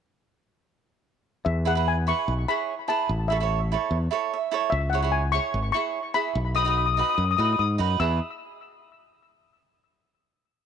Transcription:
1.45 2.11 E2 medium
1.45 1.67 E5 medium
1.65 1.72 E4 medium
1.65 1.73 G#4 medium
1.65 1.73 B4 medium
1.65 1.88 F#5 medium
1.75 1.95 E4 medium
1.75 1.95 G#4 medium
1.75 1.95 B4 medium
1.88 2.08 G#5 medium
2.07 2.32 E4 medium
2.07 2.32 G#4 medium
2.07 2.33 B4 medium
2.07 2.50 C#6 medium
2.28 2.44 B1 medium
2.48 2.73 E4 medium
2.48 2.73 G#4 medium
2.48 2.74 C#5 medium
2.48 2.91 B5 medium
2.88 3.09 E4 medium
2.88 3.10 G#4 medium
2.88 3.10 B4 medium
2.88 3.27 A5 medium
3.09 3.75 A1 medium
3.28 3.36 E4 medium
3.28 3.37 A4 medium
3.28 3.37 C#5 medium
3.28 4.48 E5 medium
3.40 3.59 E4 medium
3.40 3.59 A4 medium
3.40 3.60 C#5 medium
3.72 3.96 E4 medium
3.72 3.96 A4 medium
3.72 3.97 C#5 medium
3.91 4.07 E2 medium
4.11 4.36 E4 medium
4.11 4.36 A4 medium
4.11 4.37 C#5 medium
4.33 4.71 E5 medium
4.51 4.72 E4 medium
4.51 4.73 A4 medium
4.51 4.74 C#5 medium
4.70 5.38 C#2 medium
4.70 4.90 E5 medium
4.90 4.99 E4 medium
4.90 5.10 F#5 medium
4.94 5.00 G#4 medium
4.94 5.00 C#5 medium
5.02 5.21 E4 medium
5.02 5.22 G#4 medium
5.02 5.22 C#5 medium
5.12 5.34 G#5 medium
5.32 5.58 E4 medium
5.32 5.58 G#4 medium
5.32 5.59 C#5 medium
5.32 5.71 C#6 medium
5.54 5.71 G#1 medium
5.72 5.99 E4 medium
5.72 6.00 G#4 medium
5.72 6.16 C#6 medium
5.76 6.00 C#5 medium
6.14 6.35 E4 medium
6.14 6.36 G#4 medium
6.14 6.36 E5 medium
6.14 6.57 B5 medium
6.35 7.01 B1 medium
6.55 6.62 D#4 medium
6.55 6.62 F#4 medium
6.55 6.63 B4 medium
6.55 6.61 D#6 medium
6.63 6.84 D#4 medium
6.63 6.85 F#4 medium
6.63 6.69 D#6 medium
6.68 6.86 B4 medium
6.68 6.76 D#6 medium
6.78 6.85 D#6 medium
6.86 6.93 D#6 medium
6.94 7.22 D#4 medium
6.94 7.00 D#6 medium
6.98 7.23 F#4 medium
6.98 7.23 B4 medium
6.98 7.08 D#6 medium
7.10 7.14 D#6 medium
7.15 7.34 F#2 medium
7.15 7.23 D#6 medium
7.25 7.30 D#6 medium
7.31 7.36 D#6 medium
7.37 7.57 A2 medium
7.37 7.63 D#4 medium
7.37 7.63 F#4 medium
7.37 7.64 B4 medium
7.37 7.44 D#6 medium
7.45 7.52 D#6 medium
7.53 7.58 D#6 medium
7.59 7.77 G#2 medium
7.59 7.67 D#6 medium
7.78 7.98 F#2 medium
7.78 7.99 D#4 medium
7.78 8.00 F#4 medium
7.78 7.98 B4 medium
8.00 8.19 E2 medium
8.00 8.19 E4 medium
8.00 8.19 G#4 medium
8.00 8.19 B4 medium
8.00 8.19 E6 medium

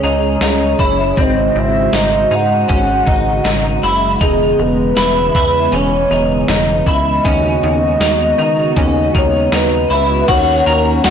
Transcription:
0.00 0.37 C#2 medium
0.00 10.25 C#3 medium
0.00 10.25 G#3 medium
0.00 1.15 C#4 medium
0.00 0.40 D#4 medium
0.00 1.15 G#4 medium
0.05 1.22 C#5 medium
0.41 0.75 C#2 medium
0.41 0.79 D#4 medium
0.41 snare medium
0.41 closed hi-hat medium
0.79 1.13 F#1 medium
0.79 1.17 E4 medium
0.79 kick medium
1.17 1.51 G#1 medium
1.17 1.93 C4 medium
1.17 4.18 F#4 medium
1.17 4.19 C5 medium
1.17 1.60 D#5 medium
1.17 kick medium
1.17 closed hi-hat medium
1.56 1.89 G#1 medium
1.56 1.98 E5 loud
1.93 2.27 G#1 medium
1.93 2.30 D#4 medium
1.93 2.36 D#5 medium
1.93 snare loud
1.93 closed hi-hat medium
2.31 2.65 G#2 medium
2.31 2.68 D#4 medium
2.31 3.85 F#5 loud
2.68 3.03 G#1 medium
2.68 3.06 C#4 medium
2.68 kick medium
2.68 closed hi-hat medium
3.07 3.41 G#1 medium
3.07 3.43 D#4 medium
3.07 kick medium
3.44 3.79 G#1 medium
3.44 3.83 D#4 medium
3.44 snare medium
3.44 closed hi-hat medium
3.83 4.17 F#1 medium
3.83 4.21 E4 medium
4.20 4.55 E1 medium
4.20 7.22 E3 medium
4.20 7.21 B3 medium
4.20 4.97 D#4 medium
4.20 4.63 G#4 medium
4.20 kick medium
4.20 closed hi-hat medium
4.59 4.93 E1 medium
4.59 5.77 B4 loud
4.96 5.31 E1 medium
4.96 5.34 E4 medium
4.96 snare loud
4.96 closed hi-hat medium
5.35 5.68 E2 medium
5.35 5.73 E4 medium
5.35 kick medium
5.72 6.06 E1 loud
5.72 6.11 C#4 medium
5.72 6.50 C#5 medium
5.72 closed hi-hat medium
6.11 6.44 E1 medium
6.11 6.48 D#4 medium
6.48 6.82 E1 loud
6.48 6.87 D#4 medium
6.48 snare medium
6.48 closed hi-hat medium
6.87 7.20 C#2 medium
6.87 7.25 E4 medium
6.87 9.12 D#5 loud
6.87 kick medium
7.25 7.58 D#2 loud
7.25 10.26 B3 medium
7.25 8.01 C#4 medium
7.25 10.26 F#4 medium
7.25 kick loud
7.25 closed hi-hat medium
7.63 7.97 D#2 medium
8.00 8.34 D#2 medium
8.00 8.38 D#4 medium
8.00 snare medium
8.00 closed hi-hat medium
8.38 8.72 D#3 medium
8.38 8.76 D#4 medium
8.76 9.10 D#2 loud
8.76 9.14 C#4 medium
8.76 kick medium
8.76 closed hi-hat medium
9.15 9.48 D#2 medium
9.15 9.51 D#4 medium
9.15 9.57 C#5 medium
9.15 kick medium
9.52 9.86 D#2 medium
9.52 9.91 D#4 medium
9.52 10.32 B4 medium
9.52 snare loud
9.52 closed hi-hat medium
9.90 10.24 C#2 medium
9.90 10.28 E4 medium
10.28 10.62 D#2 medium
10.28 11.10 D#3 medium
10.28 11.10 A#3 medium
10.28 11.10 C#4 medium
10.28 10.66 F#4 medium
10.28 11.10 F#4 loud
10.28 11.08 C#5 medium
10.28 kick loud
10.28 closed hi-hat medium
10.28 crash loud
10.66 11.00 D#2 loud
10.66 11.04 A#4 medium
11.04 11.10 D#2 medium
11.04 11.10 F#4 medium
11.04 11.10 D#5 loud
11.04 snare loud
11.04 closed hi-hat medium
11.04 tambourine medium

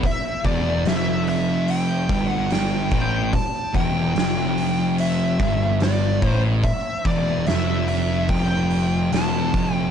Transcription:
0.03 0.46 E5 loud
0.03 kick loud
0.03 open hi-hat medium
0.44 0.83 E1 medium
0.44 0.84 E2 loud
0.44 0.88 D5 medium
0.44 kick loud
0.44 open hi-hat soft
0.85 2.06 F1 loud
0.85 2.08 F2 loud
0.85 1.26 E5 medium
0.85 snare loud
0.85 open hi-hat medium
1.27 1.71 E5 medium
1.27 open hi-hat medium
1.68 2.28 G5 medium
1.68 open hi-hat medium
2.09 2.88 G1 medium
2.09 2.91 G2 loud
2.09 kick loud
2.09 open hi-hat medium
2.28 2.52 F#5 medium
2.50 2.93 G5 loud
2.50 snare loud
2.50 open hi-hat medium
2.91 3.31 A1 medium
2.91 3.32 A2 loud
2.91 3.32 G5 medium
2.91 kick loud
2.91 open hi-hat medium
3.33 3.73 A5 loud
3.33 kick loud
3.33 open hi-hat medium
3.74 4.13 E1 medium
3.74 4.15 E2 loud
3.74 4.96 G5 loud
3.74 kick loud
3.74 open hi-hat medium
4.16 5.36 F1 loud
4.16 5.39 F2 loud
4.16 snare loud
4.16 open hi-hat medium
4.58 open hi-hat medium
4.98 5.83 E5 loud
4.98 open hi-hat medium
5.40 6.19 G1 loud
5.40 6.22 G2 loud
5.40 kick loud
5.40 open hi-hat medium
5.80 6.27 D5 medium
5.80 snare loud
5.80 open hi-hat medium
6.22 6.61 A1 loud
6.22 6.63 A2 loud
6.22 kick loud
6.22 open hi-hat medium
6.27 6.41 C5 medium
6.63 7.07 E5 medium
6.63 kick loud
6.63 open hi-hat medium
7.05 7.44 E1 loud
7.05 7.46 E2 loud
7.05 7.45 D5 medium
7.05 kick loud
7.05 open hi-hat soft
7.47 8.26 F1 medium
7.47 8.29 F2 loud
7.47 7.87 E5 medium
7.47 snare loud
7.47 open hi-hat medium
7.88 8.31 E5 medium
7.88 open hi-hat medium
8.29 9.09 F1 medium
8.29 9.12 F2 loud
8.29 9.13 G5 medium
8.29 kick loud
8.29 open hi-hat medium
8.71 open hi-hat medium
9.12 9.52 E1 loud
9.12 9.53 E2 loud
9.12 9.75 A5 loud
9.12 snare loud
9.12 open hi-hat medium
9.54 9.91 F1 medium
9.54 9.91 F2 loud
9.54 kick loud
9.54 open hi-hat medium
9.75 9.91 G5 loud

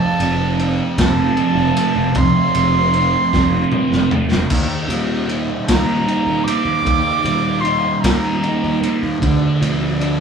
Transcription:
0.00 1.77 F2 medium
0.00 0.72 A5 loud
0.19 0.79 F1 loud
0.19 2.17 F3 medium
0.19 ride medium
0.59 1.39 C4 medium
0.59 ride medium
0.98 1.28 F1 loud
0.98 1.77 A3 medium
0.98 2.19 A5 loud
0.98 kick medium
0.98 snare loud
0.98 ride loud
1.37 2.93 C4 medium
1.37 ride medium
1.55 1.70 F1 medium
1.77 3.31 A3 medium
1.77 ride medium
1.95 2.10 F1 medium
2.15 2.30 F1 loud
2.15 4.12 F2 medium
2.15 4.12 C6 loud
2.15 kick loud
2.15 ride medium
2.55 3.14 F1 loud
2.55 4.51 F3 medium
2.55 ride medium
2.93 3.70 C4 medium
2.93 ride medium
3.33 3.63 F1 loud
3.33 4.11 A3 medium
3.33 kick medium
3.33 snare medium
3.71 4.50 C4 medium
3.71 mid tom medium
3.91 4.06 F1 medium
3.91 snare medium
4.11 4.51 A3 medium
4.11 floor tom loud
4.32 4.46 F1 medium
4.32 snare loud
4.50 4.66 D#2 medium
4.50 6.46 D#3 medium
4.50 kick loud
4.50 ride loud
4.50 crash loud
4.88 5.48 D#2 loud
4.88 6.86 G3 medium
4.88 ride medium
5.28 6.05 D#4 medium
5.28 ride medium
5.67 5.98 D#2 loud
5.67 6.44 A#3 medium
5.67 6.45 A#5 loud
5.67 kick medium
5.67 snare loud
5.67 ride loud
6.06 7.62 D#4 medium
6.06 ride medium
6.26 6.41 D#2 medium
6.44 8.03 A#3 medium
6.44 7.62 D6 loud
6.44 ride medium
6.65 6.80 D#2 medium
6.84 7.01 D#2 medium
6.84 8.82 D#3 medium
6.84 kick loud
6.84 ride loud
7.24 7.84 D#2 loud
7.24 9.21 G3 medium
7.24 ride medium
7.61 8.42 D#4 medium
7.61 8.02 C6 loud
7.65 ride medium
8.01 8.34 D#2 loud
8.01 8.80 A#3 medium
8.01 8.11 A#5 medium
8.01 kick medium
8.01 ride loud
8.05 snare loud
8.10 8.16 A5 medium
8.15 8.91 A#5 medium
8.43 9.22 D#4 medium
8.43 ride medium
8.63 8.78 D#2 medium
8.81 9.21 A#3 medium
8.81 ride medium
9.03 9.17 D#2 medium
9.20 9.37 D2 loud
9.20 10.20 D3 medium
9.20 kick loud
9.20 ride medium
9.61 10.20 D2 loud
9.61 10.20 F3 medium
9.61 ride medium
9.99 10.20 D4 medium
9.99 ride medium

